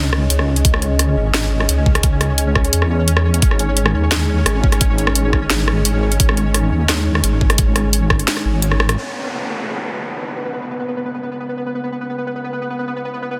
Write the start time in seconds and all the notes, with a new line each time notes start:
Already playing: C#2 C#4 G#4 C#5 D#5
0.13 cross-stick
0.30 C#2, closed hi-hat
0.39 cross-stick
0.56 closed hi-hat
0.65 C#2, kick, closed hi-hat
0.74 cross-stick
0.82 closed hi-hat
0.99 cross-stick, closed hi-hat
1.17 G#1
1.34 cross-stick, snare, closed hi-hat
1.60 cross-stick
1.69 C#2, closed hi-hat
1.86 kick
1.95 cross-stick, closed hi-hat
2.03 kick, closed hi-hat
2.21 cross-stick, closed hi-hat
2.38 closed hi-hat
2.55 kick, cross-stick
2.65 closed hi-hat
2.73 E2, closed hi-hat
2.82 cross-stick
3.08 closed hi-hat
3.17 cross-stick
3.34 closed hi-hat
3.42 G#1 G#3 D#4, kick, closed hi-hat
3.51 cross-stick
3.59 closed hi-hat
3.77 closed hi-hat
3.86 cross-stick
3.95 D#2
4.12 cross-stick, snare, closed hi-hat
4.46 G#1, cross-stick, closed hi-hat
4.64 kick
4.72 cross-stick, closed hi-hat
4.81 kick, closed hi-hat
4.98 closed hi-hat
5.07 cross-stick
5.15 closed hi-hat
5.33 kick, cross-stick
5.50 G#1, snare, closed hi-hat
5.68 cross-stick
5.85 G#1, closed hi-hat
6.12 closed hi-hat
6.20 G#1, kick, closed hi-hat
6.29 cross-stick
6.37 closed hi-hat
6.54 cross-stick, closed hi-hat
6.72 D#2
6.89 cross-stick, snare, closed hi-hat
7.15 cross-stick
7.24 G#1, closed hi-hat
7.41 kick
7.50 cross-stick, closed hi-hat
7.58 kick, closed hi-hat
7.76 cross-stick, closed hi-hat
7.93 closed hi-hat
8.10 kick, cross-stick
8.19 closed hi-hat
8.28 snare, closed hi-hat
8.37 cross-stick
8.45 G#1
8.62 closed hi-hat
8.72 cross-stick
8.80 cross-stick
8.89 cross-stick, closed hi-hat
8.97 B3 C#4 G#4 B4 D#5, downlifter
11.74 E5